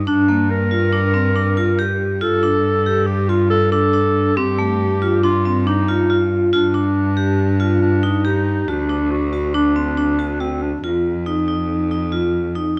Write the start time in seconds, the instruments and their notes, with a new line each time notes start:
0.07 cello G2, vibraphone D4, clarinet D4
0.28 vibraphone A#3
0.50 clarinet A#4
0.71 vibraphone F4
0.92 vibraphone D4
1.14 vibraphone C4
1.36 vibraphone D4
1.57 vibraphone F4
1.79 vibraphone G4
2.21 cello G2, vibraphone F4, clarinet A4
2.43 vibraphone D4
2.86 vibraphone G4
3.07 clarinet G4
3.29 clarinet F4, vibraphone F4
3.50 clarinet A4
3.72 vibraphone D4, clarinet A4
3.93 vibraphone D4
4.37 cello G2, vibraphone C4, clarinet G4
4.59 vibraphone A3
5.02 vibraphone F4
5.24 vibraphone D4, clarinet F4
5.45 vibraphone C4
5.67 vibraphone D4, clarinet D#4
5.88 vibraphone F4
6.10 vibraphone F4
6.53 cello G2, clarinet D4, vibraphone F4
6.74 vibraphone D4
7.17 vibraphone G4
7.60 vibraphone F4
7.82 clarinet D4
8.03 vibraphone D#4
8.25 clarinet D#4, vibraphone G4
8.68 cello D2, clarinet D4, vibraphone F#4
8.90 vibraphone D4
9.11 clarinet F#4
9.33 vibraphone F#4
9.54 vibraphone D4, clarinet D4
9.76 vibraphone C4
9.97 vibraphone D4
10.19 vibraphone F#4
10.40 clarinet C4, vibraphone F#4
10.62 clarinet D4
10.84 cello F2, vibraphone F4
11.26 vibraphone D#4
11.48 vibraphone D#4
11.91 vibraphone D#4
12.12 vibraphone F4
12.55 vibraphone D#4